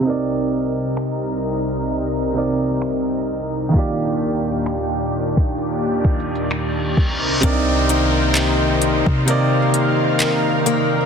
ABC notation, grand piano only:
X:1
M:4/4
L:1/8
Q:"Swing 16ths" 1/4=65
K:Cm
V:1 name="Grand piano"
[C,CEBd]4- [C,CEBd] [C,CEBd]3 | [E,B,FGd]6- [E,B,FGd] z | [C,CDEBd]3 z [C,CEBd]3 z |]